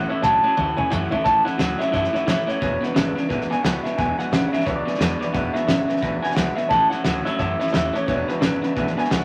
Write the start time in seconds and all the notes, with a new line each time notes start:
Already playing: A3
0.04 F#5
0.09 A2 E3 A3 C#4 E4 C#5 E5 A5, muted upright bass stroke
0.22 C#2 A2 E3 F#3 A3 C#4 E4 C#5 E5 F#5 A5, hi-hat pedal, high tom
0.43 A2 F#3 A3 C#4 E4 C#5 E5 A5
0.57 D2 A2 E3 A3 C#4 E4 C#5 E5 A5, kick, mid tom
0.77 A2 E3 C#4 E4 C#5 E5 G#5 A5, muted upright bass stroke, mid tom
0.81 A3
0.90 F#2 A2 E3 A3 C#4 E4 C#5 E5 F#5 A5, floor tom, hi-hat pedal
1.11 A2 E3 A3 C#4 E4 C#5 E5 A5, floor tom
1.24 A1 A2 E3 A3 C#4 E4 C#5 E5 A5, kick, snare
1.45 A2 E3 A3 C#4 E4 C#5 E5 F#5 B5, snare
1.58 D2 A2 E3 F#3 A3 C#4 E4 C#5 E5 A5, snare, hi-hat pedal
1.78 A2 F#3 A3 C#4 E4 C#5 E5 A5, snare
1.92 F#2 A2 E3 A3 C#4 E4 C#5 E5 A5, kick, snare
2.04 snare
2.13 A2 E3 A3 C#4 E4 C#5 E5 F#5, snare
2.26 A2 E3 A3 C#4 E4 C#5 E5 A5, snare, hi-hat pedal
2.46 A2 E3 C#4 E4 C#5 E5 F#5, muted upright bass stroke, snare
2.51 A3
2.61 E1 E2 B2 E3 G#3 D4 E4 B4 C#5 E5 G#5, kick, snare
2.80 E2 B2 E3 G#3 D4 E4 B4 E5 F#5, snare
2.94 G#1 E2 B2 C#3 E3 G#3 D4 E4 B4 E5 G#5, snare, hi-hat pedal
3.15 E2 C#3 E3 G#3 D4 E4 B4 E5 G#5, muted upright bass stroke, snare
3.28 A1 E2 B2 E3 G#3 D4 E4 B4 E5 G#5, kick, snare
3.41 snare
3.48 E2 B2 E3 G#3 D4 E4 B4 G#5, muted upright bass stroke, snare
3.52 E5 F#5
3.63 C#2 E2 B2 E3 G#3 D4 E4 B4 E5 F#5 G#5, snare, hi-hat pedal
3.83 E2 B2 E3 G#3 D4 E4 B4 E5 G#5, muted upright bass stroke, snare
3.97 E1 E2 B2 E3 G#3 D4 E4 B4 E5 G#5, kick, snare
4.17 E2 B2 E3 G#3 D4 E4 B4 E5 F#5 G#5, muted upright bass stroke, snare
4.30 A1 E2 B2 C#3 E3 G#3 D4 E4 B4 E5 G#5, snare, hi-hat pedal
4.48 F#5
4.52 E2 C#3 E3 G#3 D4 E4 B4 E5 G#5, snare
4.60 snare
4.65 C#2 E2 B2 E3 G#3 D4 E4 B4 D5 E5 G#5, kick, snare
4.85 E2 B2 E3 G#3 D4 E4 B4 E5 G#5, snare
4.94 snare
4.99 E2 B2 E3 G#3 D4 E4 B4 E5 G#5, snare, hi-hat pedal
5.19 E2 B2 G#3 D4 E4 B4 D5 E5 B5, muted upright bass stroke, snare
5.24 E3
5.33 E1 E2 B2 E3 G#3 D4 E4 B4 E5 F#5 B5, kick, snare
5.53 E2 B2 E3 G#3 D4 E4 B4 E5 G#5, snare
5.67 G#1 E2 B2 C#3 E3 G#3 D4 E4 B4 E5 F#5, snare, hi-hat pedal
5.87 E2 C#3 E3 G#3 D4 E4 B4 E5 G#5, muted upright bass stroke, snare
5.96 snare
6.01 A1 E2 B2 E3 G#3 D4 E4 B4 E5 G#5, kick, snare
6.22 E2 B2 E3 G#3 D4 E4 B4 E5 F#5 G#5, snare
6.30 snare
6.35 C#2 E2 B2 E3 G#3 D4 E4 B4 E5 F#5 B5, snare, hi-hat pedal
6.55 E2 B2 E3 G#3 D4 E4 B4 E5 F#5, snare
6.69 A1 A2 E3 A3 C#4 E4 C#5 E5 A5, kick, snare
6.90 A2 E3 A3 C#4 E4 C#5 E5 F#5 A5, snare
7.03 D2 A2 E3 F#3 A3 C#4 C#5 E5 B5, snare, hi-hat pedal
7.07 E4
7.25 A2 F#3 A3 C#4 E4 C#5 E5 A5, muted upright bass stroke, snare
7.38 F#2 A2 E3 A3 C#4 E4 C#5 E5 A5, kick, snare
7.59 A2 E3 A3 C#4 E4 C#5 E5 B5, snare
7.67 snare
7.72 D#2 A2 E3 A3 C#4 E4 C#5 E5 F#5, snare, hi-hat pedal
7.93 A2 E3 C#4 E4 C#5 E5 A5, snare
7.98 A3
8.07 E1 E2 B2 E3 G#3 D4 E4 B4 C#5 E5 G#5, kick, snare
8.28 E2 B2 G#3 D4 E4 B4 E5 G#5, snare
8.32 E3
8.41 G#1 E2 B2 C#3 E3 G#3 D4 E4 B4 E5 G#5, snare, hi-hat pedal
8.62 E2 C#3 G#3 D4 E4 B4 E5 B5, muted upright bass stroke, snare
8.66 E3
8.76 A1 E2 B2 E3 G#3 D4 E4 B4 E5 G#5, kick, snare
8.87 snare
8.97 E2 B2 E3 G#3 D4 E4 B4 E5 G#5, muted upright bass stroke, snare
9.04 snare
9.09 C#2 E2 B2 E3 G#3 D4 E4 B4 E5 F#5 G#5, snare, hi-hat pedal